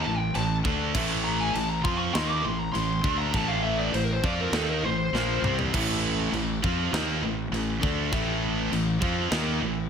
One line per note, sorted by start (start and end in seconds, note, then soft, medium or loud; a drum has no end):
0.02 0.33 A1 medium
0.02 0.17 A5 loud
0.06 0.30 A2 medium
0.06 0.30 E3 medium
0.17 0.33 G5 medium
0.35 0.63 A1 medium
0.35 0.60 A2 medium
0.35 0.60 E3 medium
0.35 0.53 A5 medium
0.35 china medium
0.65 0.93 D2 loud
0.65 0.94 D3 medium
0.65 0.95 A3 loud
0.65 0.95 D4 loud
0.65 kick loud
0.94 1.51 A1 loud
0.94 1.54 A2 loud
0.94 1.54 E3 loud
0.94 1.55 A3 loud
0.94 kick loud
0.94 crash loud
0.94 china medium
1.24 1.39 A#5 loud
1.40 1.53 G#5 medium
1.53 1.83 A1 medium
1.53 1.79 A2 medium
1.53 1.79 E3 medium
1.53 1.69 A5 medium
1.53 china medium
1.69 1.84 A#5 loud
1.84 2.13 F2 medium
1.84 2.13 F3 loud
1.84 2.13 C4 loud
1.84 2.14 F4 loud
1.84 1.97 C6 loud
1.84 kick loud
1.98 2.13 C#6 loud
2.14 2.43 D#2 loud
2.14 2.43 D#3 loud
2.14 2.43 A#3 loud
2.14 2.44 D#4 loud
2.14 2.29 C6 loud
2.14 snare loud
2.14 china medium
2.29 2.44 D6 loud
2.43 2.73 A1 medium
2.43 2.68 A2 medium
2.43 2.68 E3 medium
2.43 2.59 C6 loud
2.59 2.72 A#5 medium
2.72 3.02 A1 medium
2.72 2.99 A2 medium
2.72 2.98 E3 medium
2.72 3.15 C6 loud
2.72 china medium
3.04 3.32 D2 loud
3.04 3.34 D3 medium
3.04 3.34 A3 loud
3.04 3.34 D4 loud
3.04 kick loud
3.19 3.34 A#5 loud
3.34 3.90 A1 loud
3.34 3.94 A2 loud
3.34 3.94 E3 loud
3.34 3.94 A3 loud
3.34 3.49 A5 loud
3.34 kick loud
3.34 china medium
3.48 3.62 F5 loud
3.63 3.78 E5 loud
3.77 3.94 D5 medium
3.93 4.22 A1 medium
3.93 4.19 A2 medium
3.93 4.19 E3 medium
3.93 4.04 C5 medium
3.93 china medium
4.04 4.13 A#4 medium
4.13 4.24 C5 medium
4.23 4.51 F2 medium
4.23 4.53 F3 loud
4.23 4.53 C4 loud
4.23 4.54 F4 loud
4.23 4.39 D5 loud
4.23 kick loud
4.41 4.54 A#4 medium
4.52 4.81 D#2 loud
4.52 4.84 D#3 medium
4.52 4.84 A#3 loud
4.52 4.69 A4 medium
4.52 snare loud
4.52 china medium
4.56 4.84 D#4 loud
4.69 4.84 A#4 medium
4.83 5.11 A1 medium
4.83 5.09 A2 medium
4.83 5.09 E3 medium
4.83 4.96 C5 loud
4.97 5.54 C5 medium
5.12 5.41 A#1 medium
5.12 5.44 A#2 medium
5.12 5.44 F3 loud
5.12 5.44 A#3 medium
5.12 snare medium
5.42 5.71 C2 loud
5.42 5.73 C3 medium
5.42 5.73 G3 loud
5.42 5.73 C4 loud
5.42 mid tom loud
5.59 floor tom medium
5.74 6.30 A1 medium
5.74 6.33 A2 medium
5.74 6.33 E3 loud
5.74 6.33 A3 loud
5.74 kick loud
5.74 crash loud
5.74 china medium
6.32 6.61 A1 medium
6.32 6.58 A2 medium
6.32 6.58 E3 medium
6.32 china medium
6.63 6.91 F2 medium
6.63 6.92 F3 loud
6.63 6.93 C4 loud
6.63 6.92 F4 loud
6.63 kick loud
6.93 7.21 D#2 loud
6.93 7.22 D#3 medium
6.93 7.21 A#3 loud
6.93 7.23 D#4 loud
6.93 snare loud
6.93 china medium
7.22 7.50 A1 medium
7.22 7.47 A2 medium
7.22 7.47 E3 medium
7.51 7.80 A1 medium
7.51 7.77 A2 medium
7.51 7.77 E3 medium
7.51 china medium
7.81 8.11 D2 medium
7.81 8.11 D3 medium
7.81 8.11 A3 medium
7.81 8.12 D4 loud
7.81 kick loud
8.12 8.68 A1 loud
8.12 8.72 A2 loud
8.12 8.72 E3 loud
8.12 8.72 A3 loud
8.12 kick loud
8.12 china medium
8.72 9.00 A1 medium
8.72 8.97 A2 medium
8.72 8.97 E3 medium
8.72 china medium
9.01 9.30 F2 loud
9.01 9.31 F3 loud
9.01 9.31 C4 medium
9.01 9.32 F4 loud
9.01 kick loud
9.31 9.60 D#2 loud
9.31 9.61 D#3 medium
9.31 9.61 A#3 loud
9.31 9.61 D#4 loud
9.31 snare loud
9.31 china medium
9.61 9.90 A1 medium
9.61 9.86 A2 medium
9.61 9.86 E3 medium